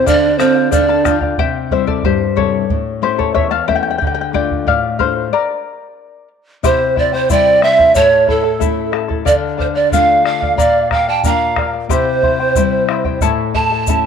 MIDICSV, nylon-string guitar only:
0, 0, Header, 1, 2, 480
1, 0, Start_track
1, 0, Tempo, 657174
1, 50, Time_signature, 2, 2, 24, 8
1, 10272, End_track
2, 0, Start_track
2, 0, Title_t, "Nylon-string guitar"
2, 0, Program_c, 0, 24
2, 46, Note_on_c, 0, 50, 66
2, 297, Note_on_c, 0, 65, 57
2, 526, Note_off_c, 0, 65, 0
2, 535, Note_on_c, 0, 69, 54
2, 764, Note_off_c, 0, 69, 0
2, 777, Note_on_c, 0, 65, 54
2, 978, Note_off_c, 0, 50, 0
2, 1006, Note_off_c, 0, 65, 0
2, 1024, Note_on_c, 0, 48, 62
2, 1251, Note_on_c, 0, 55, 49
2, 1255, Note_on_c, 0, 60, 45
2, 1258, Note_on_c, 0, 64, 51
2, 1482, Note_off_c, 0, 48, 0
2, 1495, Note_on_c, 0, 43, 62
2, 1634, Note_off_c, 0, 55, 0
2, 1636, Note_off_c, 0, 60, 0
2, 1638, Note_off_c, 0, 64, 0
2, 1722, Note_on_c, 0, 55, 46
2, 1728, Note_on_c, 0, 48, 43
2, 1732, Note_on_c, 0, 64, 49
2, 1917, Note_off_c, 0, 55, 0
2, 1921, Note_off_c, 0, 48, 0
2, 1922, Note_off_c, 0, 64, 0
2, 1957, Note_off_c, 0, 43, 0
2, 1974, Note_on_c, 0, 45, 58
2, 2204, Note_on_c, 0, 57, 48
2, 2208, Note_on_c, 0, 61, 44
2, 2211, Note_on_c, 0, 64, 50
2, 2437, Note_off_c, 0, 45, 0
2, 2443, Note_on_c, 0, 40, 64
2, 2590, Note_off_c, 0, 57, 0
2, 2593, Note_off_c, 0, 61, 0
2, 2595, Note_off_c, 0, 64, 0
2, 2688, Note_on_c, 0, 57, 46
2, 2692, Note_on_c, 0, 61, 44
2, 2695, Note_on_c, 0, 64, 54
2, 2882, Note_off_c, 0, 57, 0
2, 2883, Note_off_c, 0, 61, 0
2, 2883, Note_off_c, 0, 64, 0
2, 2912, Note_off_c, 0, 40, 0
2, 2933, Note_on_c, 0, 50, 59
2, 3163, Note_on_c, 0, 57, 47
2, 3169, Note_on_c, 0, 62, 44
2, 3174, Note_on_c, 0, 65, 54
2, 3398, Note_off_c, 0, 50, 0
2, 3409, Note_on_c, 0, 45, 65
2, 3551, Note_off_c, 0, 57, 0
2, 3553, Note_off_c, 0, 62, 0
2, 3557, Note_off_c, 0, 65, 0
2, 3649, Note_on_c, 0, 57, 49
2, 3654, Note_on_c, 0, 62, 43
2, 3660, Note_on_c, 0, 65, 53
2, 3842, Note_off_c, 0, 57, 0
2, 3845, Note_off_c, 0, 62, 0
2, 3847, Note_off_c, 0, 65, 0
2, 3875, Note_off_c, 0, 45, 0
2, 4843, Note_on_c, 0, 48, 64
2, 5326, Note_on_c, 0, 55, 49
2, 5328, Note_on_c, 0, 60, 46
2, 5334, Note_on_c, 0, 64, 54
2, 5779, Note_off_c, 0, 48, 0
2, 5795, Note_off_c, 0, 55, 0
2, 5795, Note_off_c, 0, 60, 0
2, 5799, Note_off_c, 0, 64, 0
2, 5813, Note_on_c, 0, 45, 66
2, 6282, Note_on_c, 0, 57, 54
2, 6286, Note_on_c, 0, 61, 48
2, 6291, Note_on_c, 0, 64, 54
2, 6744, Note_off_c, 0, 45, 0
2, 6753, Note_off_c, 0, 57, 0
2, 6753, Note_off_c, 0, 61, 0
2, 6757, Note_off_c, 0, 64, 0
2, 6763, Note_on_c, 0, 50, 64
2, 7255, Note_on_c, 0, 57, 50
2, 7259, Note_on_c, 0, 62, 46
2, 7259, Note_on_c, 0, 65, 57
2, 7698, Note_off_c, 0, 50, 0
2, 7719, Note_off_c, 0, 57, 0
2, 7720, Note_off_c, 0, 62, 0
2, 7720, Note_off_c, 0, 65, 0
2, 7729, Note_on_c, 0, 46, 64
2, 8213, Note_on_c, 0, 58, 47
2, 8216, Note_on_c, 0, 62, 45
2, 8220, Note_on_c, 0, 65, 50
2, 8661, Note_off_c, 0, 46, 0
2, 8678, Note_off_c, 0, 58, 0
2, 8678, Note_off_c, 0, 62, 0
2, 8679, Note_off_c, 0, 65, 0
2, 8691, Note_on_c, 0, 48, 62
2, 9178, Note_on_c, 0, 55, 48
2, 9183, Note_on_c, 0, 60, 45
2, 9187, Note_on_c, 0, 64, 57
2, 9621, Note_off_c, 0, 48, 0
2, 9640, Note_off_c, 0, 55, 0
2, 9642, Note_off_c, 0, 60, 0
2, 9643, Note_off_c, 0, 64, 0
2, 9668, Note_on_c, 0, 45, 67
2, 10146, Note_on_c, 0, 57, 52
2, 10147, Note_on_c, 0, 61, 46
2, 10151, Note_on_c, 0, 64, 52
2, 10272, Note_off_c, 0, 45, 0
2, 10272, Note_off_c, 0, 57, 0
2, 10272, Note_off_c, 0, 61, 0
2, 10272, Note_off_c, 0, 64, 0
2, 10272, End_track
0, 0, End_of_file